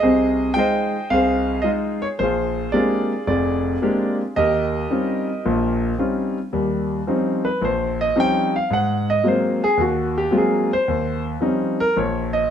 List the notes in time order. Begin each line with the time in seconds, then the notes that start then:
0.00 C2 G#4 C5 D#5
0.04 C3
0.54 G#3 D#4 F4 G5
0.59 C5 D#5
1.10 C2 G#4 C5 F5
1.62 G#3 D#4 F4 D#5
2.02 C#5
2.19 A#1 F4 G#4 C5
2.72 G#3 A#3 C4 D4 G4 G#4 D5
2.76 F4
3.27 F1 F4 G#4 D5
3.82 G#3 A#3 C4 D4 G4
4.36 D#2 G4 A#4 D#5
4.90 G3 C4 C#4 D#4 F4
5.45 A#1 A#2
5.98 G3 C4 C#4 D#4 F4
6.53 D#2 G3
7.07 F3 G3 C4 C#4 D#4
7.45 B4
7.62 A#1 C5
8.01 D#5
8.16 F3 G3 C4 C#4 D#4
8.20 G5
8.56 F5
8.70 G#2 F#5
9.10 D#5
9.24 F#3 G#3 A#3 C4 F4
9.28 C5
9.64 G#4
9.77 D#2 F#4
10.18 G4
10.31 F#3 G#3 A#3 C4 F4
10.37 G#4
10.73 C5
10.88 D#2
11.41 F3 G3 C4 C#4 D#4
11.80 A#4
11.97 A#1 C#5
12.33 D#5